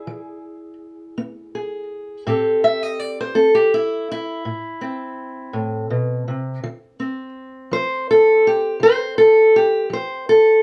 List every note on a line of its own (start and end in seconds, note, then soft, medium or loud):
0.00 2.23 E4 soft
0.00 1.54 G#4 medium
0.07 0.73 E3 medium
1.18 1.83 B3 medium
1.55 2.23 G#4 soft
2.27 2.92 A2 medium
2.27 3.35 C4 medium
2.27 3.53 G4 medium
2.27 3.20 A4 soft
2.64 2.83 E5 medium
2.83 2.99 D#5 medium
2.99 3.17 D5 medium
3.21 3.37 C5 medium
3.35 4.01 C4 medium
3.35 3.53 A4 medium
3.55 3.72 G4 medium
3.74 4.09 E4 medium
4.12 5.56 E4 medium
4.45 5.10 A2 medium
4.81 6.67 C4 soft
5.53 5.90 A2 medium
5.90 6.27 B2 medium
6.28 6.63 C3 medium
6.64 7.29 D3 medium
7.00 10.62 C4 soft
7.71 8.37 F3 medium
7.71 8.09 C5 loud
8.11 8.46 A4 medium
8.47 8.83 G4 medium
8.80 9.46 D3 medium
8.80 9.18 C5 loud
9.18 9.54 A4 loud
9.56 9.92 G4 medium
9.90 10.56 F3 medium
9.90 10.29 C5 medium
10.29 10.62 A4 medium